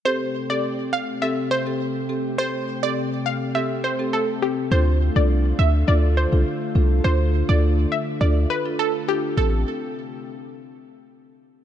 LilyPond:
<<
  \new Staff \with { instrumentName = "Synth pluck" } { \time 4/4 \key a \minor \tempo 4 = 103 c''8 r16 d''16 r8 f''16 r16 e''16 r16 c''16 r4 r16 | c''8 r16 d''16 r8 f''16 r16 e''16 r16 c''16 r16 a'16 r16 g'16 r16 | c''8 r16 d''16 r8 e''16 r16 d''16 r16 c''16 r4 r16 | c''8 r16 d''16 r8 e''16 r16 d''16 r16 b'16 r16 a'16 r16 g'16 r16 |
a'8 r2. r8 | }
  \new Staff \with { instrumentName = "Marimba" } { \time 4/4 \key a \minor <c' g' a'>8. <c' g' a'>16 r4 <c' g' a'>8. <c' g' a'>16 r8 <c' g' a'>16 r16 | <c' g' a'>8. <c' g' a'>16 r4 <c' g' a'>8. <c' g' a'>16 r8 <c' g' a'>16 r16 | <d' f' a'>8. <d' f' a'>16 r4 <d' f' a'>8. <d' f' a'>16 r8 <d' f' a'>16 r16 | <d' f' a'>8. <d' f' a'>16 r4 <d' f' a'>8. <d' f' a'>16 r8 <d' f' a'>16 r16 |
<c' g' a'>8 r2. r8 | }
  \new Staff \with { instrumentName = "Analog synth pad" } { \time 4/4 \key a \minor << { <c g'>1~ | <c g'>1 | <d f'>1~ | <d f'>1 |
<c a g'>8 r2. r8 | } \\ { a1~ | a1~ | a1~ | a1 |
r1 | } >> }
  \new Staff \with { instrumentName = "808-style bass" } { \clef bass \time 4/4 \key a \minor r1 | r1 | d,8. c,8. d,8 d,8. c,16 r8 c,8 | d,8. d,8. r8 d,8 r4. |
a,,8 r2. r8 | }
>>